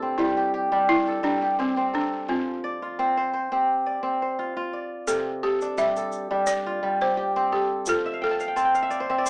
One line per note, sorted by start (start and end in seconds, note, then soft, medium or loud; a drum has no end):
0.00 1.83 C3 medium
0.00 0.20 A3 medium
0.00 1.58 C4 medium
0.00 0.72 D4 medium
0.00 0.97 E4 medium
0.00 0.29 G4 medium
0.00 1.07 A4 medium
0.18 0.71 G3 medium
0.18 0.88 E4 medium
0.37 0.53 G4 medium
0.54 1.42 G4 medium
0.72 1.22 G3 medium
0.72 2.40 D4 medium
0.89 1.21 E4 loud
1.07 1.93 A4 medium
1.23 2.33 G3 medium
1.23 1.40 D4 medium
1.42 2.83 G4 medium
1.59 1.77 C4 medium
1.59 1.95 C4 medium
1.77 2.98 C4 medium
1.94 2.27 D4 medium
1.94 3.25 A4 medium
2.28 4.62 F3 medium
2.28 4.34 C4 medium
2.64 3.75 D5 medium
2.82 4.34 F4 medium
2.99 3.51 C4 medium
3.17 3.33 C5 medium
3.33 4.22 C5 medium
3.52 4.02 C4 medium
3.52 4.93 G4 medium
3.86 4.73 D5 medium
4.03 5.83 C4 medium
4.22 5.41 C5 medium
4.39 4.56 F4 medium
4.57 6.08 F4 medium
4.73 5.84 D5 medium
5.07 7.42 C3 medium
5.07 5.43 A4 medium
5.07 shaker medium
5.43 5.75 G4 medium
5.43 5.96 A4 medium
5.61 6.30 D4 medium
5.61 shaker soft
5.78 6.30 G3 medium
5.78 7.01 G4 medium
5.78 6.50 E5 medium
5.78 shaker soft
5.96 7.28 A4 medium
5.96 shaker soft
6.12 shaker soft
6.31 6.82 G3 medium
6.31 7.99 D4 medium
6.47 7.02 D5 loud
6.47 shaker medium
6.66 8.12 F4 medium
6.83 7.91 G3 medium
7.01 7.17 G4 medium
7.01 7.54 C5 medium
7.17 8.58 G4 medium
7.36 8.56 C4 medium
7.52 7.88 G4 medium
7.52 8.84 A4 medium
7.86 9.30 F3 medium
7.86 8.20 A4 medium
7.86 shaker medium
8.06 8.46 E5 medium
8.14 8.40 F5 medium
8.22 9.23 A4 medium
8.22 8.47 G5 medium
8.31 8.56 A5 medium
8.40 8.74 F5 medium
8.40 shaker soft
8.48 8.65 G5 medium
8.56 9.09 C4 medium
8.56 9.30 A5 medium
8.56 shaker soft
8.65 9.30 G5 medium
8.75 9.16 F5 medium
8.75 shaker soft
8.82 9.09 E5 medium
8.90 9.18 D5 medium
8.90 shaker soft
9.00 9.25 C5 medium
9.10 9.30 C4 medium
9.10 9.30 E5 medium
9.18 9.30 D5 medium
9.26 9.30 C5 medium
9.26 shaker medium